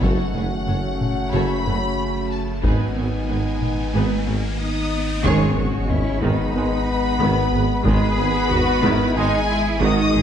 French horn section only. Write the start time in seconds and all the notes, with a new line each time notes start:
0.03 C#4 F#4
2.65 B3 D#4
4.59 D#4
5.24 C#4
6.22 B3
7.85 B3
9.16 G#3
9.82 D#4